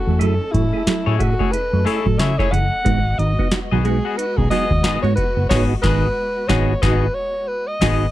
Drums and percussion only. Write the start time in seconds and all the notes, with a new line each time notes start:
0.21 closed hi-hat
0.54 kick, closed hi-hat
0.87 snare, closed hi-hat
1.20 kick, closed hi-hat
1.40 kick
1.54 closed hi-hat
1.87 open hi-hat
2.06 kick
2.19 snare, closed hi-hat
2.39 kick, snare
2.54 closed hi-hat
2.86 kick, closed hi-hat
3.19 closed hi-hat
3.39 kick
3.51 snare, closed hi-hat
3.85 snare, closed hi-hat
4.19 closed hi-hat
4.38 kick
4.51 open hi-hat
4.71 kick
4.84 snare, closed hi-hat
5.04 snare
5.17 kick, closed hi-hat
5.50 kick, snare, crash
5.83 kick, snare
6.49 kick, snare
6.83 kick, snare
7.81 kick, snare, crash